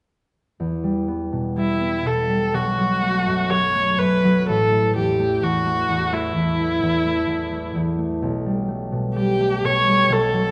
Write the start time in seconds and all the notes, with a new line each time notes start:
0.60 E2
0.84 G3
1.08 B3
1.32 B2
1.56 G3 E4
1.80 B3
2.05 B2 A4
2.29 G3
2.53 B1 F#4
2.76 F#3
3.02 A3
3.27 F#2
3.50 F#3 C#5
3.75 A3
3.98 F#2 B4
4.24 F#3
4.48 A1 A4
4.72 A3
4.95 E2 G4
5.19 A3
5.43 E2 F#4
5.66 A3
5.89 E2
6.12 A3 E4
6.36 E2
6.60 A3
6.83 E2
7.06 A3
7.29 E2
7.52 A3
7.75 E2
7.98 A3
8.22 B1
8.46 G3
8.68 A3
8.92 B2
9.16 G3 G4
9.39 A3
9.63 B2 C#5
9.87 G3
10.09 B1 A4
10.33 F#3